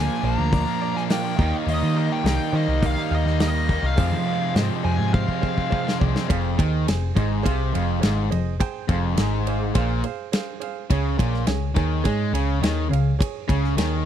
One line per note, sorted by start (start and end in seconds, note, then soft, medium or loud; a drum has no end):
0.00 0.20 A#2 medium
0.00 1.37 A#2 medium
0.00 0.22 F3 medium
0.00 1.37 F3 medium
0.00 0.23 A#3 medium
0.00 1.38 A#3 loud
0.00 0.23 D4 medium
0.00 0.17 F4 medium
0.00 0.17 A#4 medium
0.00 0.17 C5 medium
0.00 0.24 G#5 medium
0.21 0.36 A#1 medium
0.21 0.66 A#2 medium
0.21 0.38 F3 medium
0.21 0.37 A#3 medium
0.21 0.35 D4 medium
0.21 0.46 F4 medium
0.21 0.46 A#4 medium
0.21 0.47 C5 medium
0.21 0.98 A#5 loud
0.36 0.64 D2 medium
0.36 0.66 F3 medium
0.36 0.65 A#3 medium
0.36 0.64 D4 medium
0.51 0.75 F4 medium
0.51 0.75 A#4 medium
0.51 0.75 D5 medium
0.51 kick loud
0.51 open hi-hat medium
0.65 0.95 F3 medium
0.65 0.94 A#3 medium
0.65 0.93 D4 medium
0.81 1.04 F4 loud
0.81 1.04 A#4 medium
0.81 1.04 D5 loud
0.94 1.08 F3 medium
0.94 1.09 A#3 medium
0.94 1.09 D4 medium
0.94 1.02 G#5 medium
0.94 snare soft
1.08 1.36 A#2 medium
1.08 1.23 F3 loud
1.08 1.22 A#3 loud
1.08 1.20 D4 loud
1.08 1.33 F4 loud
1.08 1.33 A#4 medium
1.08 1.34 D5 loud
1.08 snare loud
1.08 open hi-hat medium
1.12 1.54 G5 medium
1.21 1.37 F3 medium
1.21 1.37 A#3 medium
1.21 1.36 D4 medium
1.36 1.52 D#2 medium
1.36 1.63 D#3 loud
1.36 1.52 G3 loud
1.36 1.51 A#3 loud
1.36 1.49 D#4 loud
1.36 1.85 G4 medium
1.36 1.85 A#4 medium
1.36 1.85 D#5 medium
1.36 kick loud
1.50 1.64 G3 medium
1.50 1.65 A#3 medium
1.50 1.66 D#4 medium
1.64 1.80 D#2 loud
1.64 1.93 D#3 loud
1.64 1.94 G3 medium
1.64 1.95 A#3 medium
1.64 1.96 D#4 loud
1.68 2.13 D#5 medium
1.68 open hi-hat medium
1.83 2.08 D#3 medium
1.94 2.21 D#3 medium
1.94 2.10 G3 medium
1.94 2.09 A#3 medium
1.94 2.08 D#4 medium
1.94 2.19 G4 medium
1.94 2.19 A#4 medium
1.94 2.20 D#5 medium
2.09 2.22 G3 medium
2.09 2.24 A#3 medium
2.09 2.25 D#4 medium
2.09 2.26 G5 medium
2.23 2.38 C2 medium
2.23 2.51 D#3 loud
2.23 2.53 G3 loud
2.23 2.53 A#3 loud
2.23 2.54 D#4 medium
2.23 2.47 G4 medium
2.23 2.47 A#4 medium
2.23 2.48 D#5 medium
2.23 snare loud
2.23 open hi-hat medium
2.28 2.56 G5 medium
2.52 2.97 D#3 medium
2.52 2.67 D#3 medium
2.52 2.69 G3 medium
2.52 2.68 A#3 medium
2.52 2.66 D#4 medium
2.52 2.76 G4 medium
2.52 2.76 A#4 medium
2.52 2.77 C5 medium
2.52 2.84 D#5 loud
2.68 2.94 C2 medium
2.68 2.98 G3 medium
2.68 2.97 A#3 medium
2.68 2.96 D#4 medium
2.82 3.05 G4 medium
2.82 3.06 A#4 medium
2.82 3.06 D#5 medium
2.82 kick loud
2.82 open hi-hat medium
2.86 3.14 F5 medium
2.97 3.28 G3 medium
2.97 3.27 A#3 medium
2.97 3.26 D#4 medium
3.11 3.25 D#2 medium
3.11 3.34 G4 loud
3.11 3.35 A#4 loud
3.11 3.40 D#5 medium
3.11 3.35 F5 loud
3.26 3.78 D#2 loud
3.26 3.40 G3 medium
3.26 3.41 A#3 medium
3.26 3.41 D#4 medium
3.26 snare soft
3.39 3.66 D#3 loud
3.39 3.56 G3 loud
3.39 3.54 A#3 loud
3.39 3.53 D#4 loud
3.39 3.63 G4 medium
3.39 3.64 A#4 medium
3.39 3.64 D#5 loud
3.39 3.86 D#5 medium
3.39 snare loud
3.39 open hi-hat medium
3.54 3.67 G3 medium
3.54 3.68 A#3 medium
3.54 3.69 D#4 medium
3.67 3.96 D#3 medium
3.67 3.84 G3 medium
3.67 3.83 A#3 loud
3.67 3.82 D#4 medium
3.67 3.92 G4 medium
3.67 3.93 A#4 medium
3.67 3.93 D#5 medium
3.67 kick medium
3.83 3.96 C2 medium
3.83 3.97 G3 medium
3.83 3.97 A#3 medium
3.83 3.96 D#4 medium
3.83 4.53 F5 medium
3.96 4.53 F2 loud
3.96 4.13 F2 medium
3.96 4.24 C3 medium
3.96 4.25 F3 loud
3.96 4.26 G#3 loud
3.96 4.27 C4 loud
3.96 4.20 G#4 medium
3.96 4.21 C5 medium
3.96 4.21 F5 loud
3.96 kick loud
3.96 open hi-hat medium
4.12 4.51 F3 medium
4.25 4.54 C3 medium
4.25 4.41 F3 medium
4.25 4.40 G#3 medium
4.25 4.39 C4 medium
4.25 4.50 G#4 medium
4.25 4.50 C5 medium
4.25 4.50 F5 medium
4.40 4.55 F3 medium
4.40 4.56 G#3 medium
4.40 4.56 C4 medium
4.54 5.13 F2 medium
4.54 4.69 G#2 medium
4.54 4.83 C3 loud
4.54 4.84 F3 medium
4.54 4.84 G#3 medium
4.54 4.85 C4 loud
4.54 4.78 G#4 medium
4.54 4.79 C5 medium
4.54 4.79 D#5 loud
4.54 snare loud
4.54 open hi-hat medium
4.83 4.98 F2 medium
4.83 5.28 C3 medium
4.83 4.99 F3 medium
4.83 4.98 G#3 medium
4.83 4.97 C4 medium
4.83 5.07 G#4 medium
4.83 5.07 C5 medium
4.83 5.08 G5 medium
4.83 5.12 G#5 loud
4.98 5.25 G#2 medium
4.98 5.29 F3 medium
4.98 5.28 G#3 medium
4.98 5.26 C4 medium
5.13 5.37 G#4 medium
5.13 5.37 C5 medium
5.13 5.96 F5 loud
5.13 5.37 F5 medium
5.13 kick loud
5.27 5.58 F3 medium
5.27 5.57 G#3 medium
5.27 5.55 C4 medium
5.27 kick medium
5.41 5.65 G#4 loud
5.41 5.65 C5 medium
5.41 5.65 F5 loud
5.41 kick medium
5.56 5.71 F3 medium
5.56 5.71 G#3 medium
5.56 5.72 C4 medium
5.56 kick medium
5.70 6.14 F2 loud
5.70 5.99 C3 loud
5.70 5.88 F3 loud
5.70 5.86 G#3 loud
5.70 5.85 C4 loud
5.70 5.94 G#4 loud
5.70 5.94 C5 loud
5.70 5.94 F5 loud
5.70 kick medium
5.86 6.01 F3 medium
5.86 6.01 G#3 medium
5.86 6.02 C4 medium
5.86 snare medium
6.00 6.14 C2 medium
6.00 6.27 C3 medium
6.00 6.16 F3 medium
6.00 6.15 G#3 medium
6.00 6.13 C4 loud
6.00 6.23 G#4 loud
6.00 6.23 C5 medium
6.00 6.24 D5 loud
6.00 kick loud
6.15 6.29 F3 medium
6.15 6.28 G#3 medium
6.15 6.27 C4 medium
6.15 snare medium
6.29 6.57 F1 medium
6.29 6.57 F2 loud
6.29 6.52 G#4 loud
6.29 6.52 C5 loud
6.29 6.52 F5 loud
6.29 kick loud
6.29 ride loud
6.58 6.85 D#2 loud
6.58 6.86 D#3 loud
6.58 6.81 G#4 medium
6.58 6.81 C5 medium
6.58 6.82 G5 medium
6.58 kick loud
6.58 ride medium
6.87 7.14 F1 medium
6.87 7.10 F2 medium
6.87 7.10 G#4 medium
6.87 7.10 C5 medium
6.87 7.10 G#5 medium
6.87 snare loud
6.87 ride loud
7.15 7.43 G#1 loud
7.15 7.44 G#2 loud
7.15 7.38 G#4 medium
7.15 7.39 C5 medium
7.15 7.39 D#5 loud
7.15 kick loud
7.15 ride medium
7.43 7.72 C2 medium
7.43 7.72 C3 loud
7.43 7.67 G#4 loud
7.43 7.67 C5 loud
7.43 7.67 F5 loud
7.43 kick loud
7.43 ride medium
7.72 8.01 F1 medium
7.72 8.01 F2 loud
7.72 7.96 G#4 medium
7.72 7.96 C5 medium
7.72 7.97 F5 loud
7.72 ride medium
8.00 8.29 G#1 medium
8.00 8.30 G#2 loud
8.00 8.24 G#4 medium
8.00 8.24 C5 medium
8.00 8.24 F5 loud
8.00 snare loud
8.00 ride loud
8.30 8.58 F1 medium
8.30 8.54 F2 medium
8.30 8.53 G#4 medium
8.30 8.53 C5 medium
8.30 8.54 D#5 loud
8.30 ride medium
8.60 8.82 G#4 loud
8.60 8.83 C5 loud
8.60 8.83 G5 loud
8.60 kick loud
8.60 ride medium
8.88 9.15 F1 loud
8.88 9.16 F2 medium
8.88 9.12 G#4 medium
8.88 9.12 C5 medium
8.88 9.12 F5 medium
8.88 kick loud
8.88 ride medium
9.16 9.71 G#1 medium
9.16 9.73 G#2 loud
9.16 9.41 G#4 medium
9.16 9.41 C5 medium
9.16 9.41 G#5 loud
9.16 snare loud
9.16 ride loud
9.47 9.69 G#4 loud
9.47 9.69 C5 medium
9.47 9.70 F5 loud
9.47 ride medium
9.74 10.02 A#1 loud
9.74 10.02 A#2 loud
9.74 9.98 G#4 loud
9.74 9.98 C5 loud
9.74 9.98 F5 loud
9.74 kick loud
9.74 ride medium
10.04 10.27 G#4 medium
10.04 10.27 C5 medium
10.04 10.27 F5 loud
10.04 ride medium
10.32 10.55 G#4 medium
10.32 10.55 C5 medium
10.32 10.55 F5 medium
10.32 snare loud
10.32 ride medium
10.60 10.83 G#4 medium
10.60 10.83 C5 medium
10.60 10.84 F5 loud
10.60 ride medium
10.90 11.17 C#2 medium
10.90 11.17 C#3 loud
10.90 11.13 G#4 loud
10.90 11.13 C#5 loud
10.90 11.13 G#5 loud
10.90 kick loud
10.90 ride loud
11.17 11.45 A#1 loud
11.17 11.46 A#2 loud
11.17 11.41 G#4 medium
11.17 11.41 C#5 medium
11.17 11.41 G#5 loud
11.17 kick loud
11.17 ride medium
11.34 snare soft
11.46 11.74 C#2 medium
11.46 11.70 C#3 medium
11.46 11.70 G#4 medium
11.46 11.70 C#5 medium
11.46 11.70 G#5 loud
11.46 snare loud
11.46 ride loud
11.74 12.03 D#2 medium
11.74 12.03 D#3 loud
11.74 11.99 G#4 medium
11.74 11.99 C#5 medium
11.74 11.99 G#5 loud
11.74 kick loud
11.74 ride medium
12.04 12.31 G#2 loud
12.04 12.32 G#3 medium
12.04 12.27 G#4 loud
12.04 12.27 C#5 loud
12.04 12.28 G#5 loud
12.04 kick loud
12.04 ride medium
12.33 12.60 C#2 medium
12.33 12.61 C#3 loud
12.33 12.56 G#4 medium
12.33 12.56 C#5 medium
12.33 12.57 G#5 loud
12.33 ride medium
12.62 12.89 D#2 medium
12.62 12.89 D#3 loud
12.62 12.85 G#4 medium
12.62 12.85 C#5 medium
12.62 12.85 G#5 loud
12.62 snare loud
12.62 ride medium
12.90 13.18 C#2 medium
12.90 13.13 C#3 medium
12.90 13.13 G#4 medium
12.90 13.13 C#5 medium
12.90 13.13 F5 loud
12.90 ride medium
13.19 13.42 G#4 loud
13.19 13.42 C#5 medium
13.19 13.43 G#5 loud
13.19 kick loud
13.19 ride loud
13.48 13.75 C#2 loud
13.48 13.76 C#3 loud
13.48 13.71 G#4 medium
13.48 13.71 C#5 medium
13.48 13.71 G#5 medium
13.48 kick loud
13.48 ride medium
13.64 snare soft
13.77 14.04 D#2 medium
13.77 14.05 D#3 loud
13.77 14.00 G#4 medium
13.77 14.00 C#5 medium
13.77 14.00 G#5 medium
13.77 snare loud
13.77 ride loud